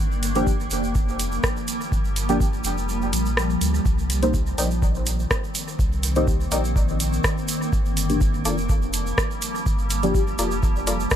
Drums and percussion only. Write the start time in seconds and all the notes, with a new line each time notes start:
0.12 shaker
0.23 closed hi-hat, shaker
0.35 closed hi-hat, shaker
0.47 kick, shaker
0.60 shaker
0.71 closed hi-hat, shaker
0.84 shaker
0.95 kick, shaker
1.09 shaker
1.19 closed hi-hat, shaker
1.32 shaker
1.43 kick, cross-stick, shaker
1.57 shaker
1.68 closed hi-hat, shaker
1.81 shaker
1.92 kick, shaker
2.05 shaker
2.16 closed hi-hat, shaker
2.29 closed hi-hat, shaker
2.40 kick, shaker
2.53 shaker
2.64 closed hi-hat, shaker
2.78 shaker
2.89 shaker
3.02 shaker
3.13 closed hi-hat, shaker
3.26 shaker
3.37 cross-stick, shaker
3.50 shaker
3.61 closed hi-hat, shaker
3.74 shaker
3.86 kick, shaker
3.99 shaker
4.10 closed hi-hat, shaker
4.23 closed hi-hat, shaker
4.34 kick, shaker
4.46 shaker
4.58 closed hi-hat, shaker
4.71 shaker
4.82 kick, shaker
4.95 shaker
5.06 closed hi-hat, shaker
5.20 shaker
5.31 kick, cross-stick, shaker
5.44 shaker
5.55 closed hi-hat, shaker
5.68 shaker
5.79 kick, shaker
5.93 shaker
6.03 closed hi-hat, shaker
6.15 closed hi-hat, shaker
6.28 kick, shaker
6.41 shaker
6.52 closed hi-hat, shaker
6.65 shaker
6.76 kick, shaker
6.89 shaker
7.00 closed hi-hat, shaker
7.13 shaker
7.24 kick, cross-stick, shaker
7.38 shaker
7.48 closed hi-hat, shaker
7.62 shaker
7.73 kick, shaker
7.86 shaker
7.97 closed hi-hat, shaker
8.10 closed hi-hat, shaker
8.21 kick, shaker
8.34 shaker
8.45 closed hi-hat, shaker
8.58 shaker
8.69 kick, shaker
8.82 shaker
8.93 closed hi-hat, shaker
9.07 shaker
9.18 kick, cross-stick, shaker
9.31 shaker
9.42 closed hi-hat, shaker
9.55 shaker
9.66 kick, shaker
9.79 shaker
9.90 closed hi-hat, shaker
10.03 closed hi-hat, shaker
10.15 kick, shaker
10.27 shaker
10.39 closed hi-hat, shaker
10.51 shaker
10.63 kick, shaker
10.76 shaker
10.87 closed hi-hat, shaker
11.00 shaker
11.11 kick, cross-stick, shaker